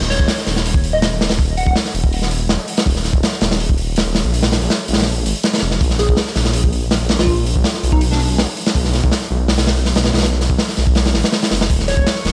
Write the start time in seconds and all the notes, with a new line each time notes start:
Already playing: D#1
0.01 snare
0.10 C#5, snare, open hi-hat
0.19 D#1, kick
0.28 snare, open hi-hat
0.38 snare
0.46 D#1, snare, open hi-hat
0.56 snare
0.65 open hi-hat
0.74 kick
0.84 open hi-hat
0.93 D#5
1.02 D#5, snare, open hi-hat
1.12 D#1
1.21 snare, open hi-hat
1.29 D#1, snare, open hi-hat
1.39 kick, open hi-hat
1.57 F#5, open hi-hat
1.66 D#1 F#5, kick
1.76 snare, open hi-hat
1.85 snare
1.94 D#1, open hi-hat
2.04 kick
2.12 open hi-hat
2.22 snare
2.31 open hi-hat
2.49 snare, open hi-hat
2.68 open hi-hat
2.77 snare, open hi-hat
2.86 D#1, kick, open hi-hat
2.96 snare
3.04 snare, open hi-hat
3.13 D#1, kick
3.23 snare, open hi-hat
3.33 snare
3.41 D#1, snare, open hi-hat
3.51 snare, open hi-hat
3.60 open hi-hat
3.69 kick
3.78 open hi-hat
3.96 snare, open hi-hat
4.06 D#1
4.15 snare, open hi-hat
4.25 A#1
4.34 open hi-hat
4.43 snare, open hi-hat
4.52 snare, open hi-hat
4.61 A#1, open hi-hat
4.70 snare, open hi-hat
4.88 A#1, open hi-hat
4.93 snare, open hi-hat
4.98 snare, open hi-hat
5.02 snare, open hi-hat
5.07 open hi-hat
5.25 G#1, open hi-hat
5.43 snare, open hi-hat
5.53 snare, open hi-hat
5.58 snare, open hi-hat
5.62 F1, open hi-hat
5.71 snare
5.81 A#1, kick, open hi-hat
5.90 snare
5.99 G#4, snare, open hi-hat
6.09 A#1, kick
6.17 snare, open hi-hat
6.27 snare
6.36 A#1, snare, open hi-hat
6.45 snare
6.53 open hi-hat
6.64 kick
6.73 open hi-hat
6.91 snare, open hi-hat
7.00 A#1
7.09 snare, open hi-hat
7.19 A#1 F4, snare, open hi-hat
7.27 kick, open hi-hat
7.46 open hi-hat
7.56 A#1, kick
7.64 snare, open hi-hat
7.74 snare
7.83 B1, open hi-hat
7.92 D#4, kick
8.01 open hi-hat
8.11 D4, snare
8.20 open hi-hat
8.38 snare, open hi-hat
8.57 open hi-hat
8.66 snare, open hi-hat
8.75 B1, kick, open hi-hat
8.85 snare
8.94 snare, open hi-hat
9.04 B1, kick
9.12 snare, open hi-hat
9.22 snare
9.30 B1
9.48 snare, open hi-hat
9.58 snare, open hi-hat
9.67 snare, open hi-hat
9.76 snare
9.85 snare, open hi-hat
9.95 B1, snare, open hi-hat
10.04 snare, open hi-hat
10.13 B1, snare, open hi-hat
10.17 snare, open hi-hat
10.22 snare, open hi-hat
10.32 snare
10.41 snare, open hi-hat
10.50 B1, kick
10.58 snare, open hi-hat
10.69 snare
10.77 B1, snare, open hi-hat
10.87 kick
10.95 snare, open hi-hat
11.05 snare, open hi-hat
11.14 A1, snare, open hi-hat
11.23 snare, open hi-hat
11.32 snare, open hi-hat
11.42 snare, open hi-hat
11.51 F#1, snare, open hi-hat
11.61 snare, open hi-hat
11.70 D#1 D#4 F4 F#4 C#5 C#6, kick, closed hi-hat, open hi-hat
11.80 snare
11.88 C#5, snare, closed hi-hat, open hi-hat
11.97 D#1, kick
12.07 snare, closed hi-hat, open hi-hat
12.16 snare
12.25 D#1, snare, closed hi-hat, open hi-hat